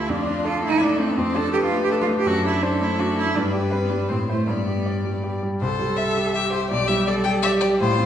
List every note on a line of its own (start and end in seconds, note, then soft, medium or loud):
0.00 0.12 D2 medium
0.00 0.12 A3 soft
0.00 0.11 E4 medium
0.00 0.12 F4 medium
0.00 0.11 A4 medium
0.00 0.12 A4 medium
0.09 1.14 F2 medium
0.09 0.47 D4 medium
0.09 0.48 F4 medium
0.27 0.56 D4 medium
0.44 0.64 F4 medium
0.44 0.74 A4 medium
0.44 0.82 A4 medium
0.63 0.92 A3 soft
0.63 0.85 E4 medium
0.81 1.10 D4 medium
0.81 1.01 D4 medium
0.81 1.19 A4 medium
0.99 1.18 A3 medium
0.99 1.13 C4 medium
1.11 1.19 B3 medium
1.17 2.23 F2 medium
1.17 1.37 C4 medium
1.17 1.53 C5 medium
1.35 1.65 D4 medium
1.35 1.52 A4 loud
1.53 1.57 G4 loud
1.53 1.83 A4 medium
1.53 2.25 B4 medium
1.64 1.82 F4 medium
1.72 2.01 A3 medium
1.84 1.91 G4 medium
1.90 2.19 D4 medium
1.90 1.95 A4 medium
2.01 2.08 F4 medium
2.08 2.26 A3 medium
2.19 2.28 G4 medium
2.26 3.32 F#2 medium
2.26 2.45 F#4 loud
2.26 2.62 A4 medium
2.44 2.74 D4 medium
2.44 2.64 E4 medium
2.62 2.84 D4 medium
2.62 3.38 A4 medium
2.62 2.92 C5 medium
2.81 3.10 A3 medium
2.81 3.01 E4 medium
2.99 3.29 D4 medium
2.99 3.18 F#4 medium
3.17 3.36 A3 soft
3.17 3.37 E4 medium
3.35 4.07 G2 medium
3.35 3.72 D4 medium
3.35 4.10 B4 medium
3.53 3.83 G4 soft
3.71 3.81 C4 medium
3.71 4.02 B4 medium
3.82 3.91 B3 medium
3.90 4.10 G3 soft
3.90 4.08 D4 medium
4.09 4.47 A2 medium
4.09 4.17 C4 medium
4.09 4.47 C5 medium
4.29 4.50 A3 medium
4.29 4.46 E4 soft
4.29 4.46 C5 soft
4.47 5.57 G2 medium
4.47 5.24 B3 medium
4.47 5.40 D5 medium
4.68 4.98 G4 soft
4.86 5.16 D5 soft
5.05 5.35 G3 soft
5.23 5.54 G4 soft
5.43 5.61 G3 soft
5.61 6.68 C2 medium
5.61 6.37 A4 medium
5.61 5.98 C5 medium
5.79 6.09 G3 medium
5.97 6.33 E5 medium
5.97 6.27 E5 medium
6.16 6.45 G4 medium
6.34 6.72 G4 medium
6.34 6.63 E5 medium
6.34 6.52 E5 medium
6.52 6.71 G4 medium
6.52 6.69 C5 medium
6.70 7.77 B1 medium
6.70 7.10 G4 medium
6.70 6.89 D5 loud
6.87 7.18 G3 medium
6.87 7.06 E5 medium
7.07 7.45 A4 medium
7.07 7.14 D5 medium
7.07 7.36 D5 medium
7.24 7.54 G4 medium
7.24 7.31 G5 loud
7.42 7.80 G4 medium
7.42 7.73 D5 medium
7.42 7.50 E5 loud
7.61 7.80 G4 medium
7.61 7.68 D5 medium
7.79 8.06 A2 medium
7.79 8.06 F4 medium
7.79 8.06 C5 loud
7.98 8.06 C4 medium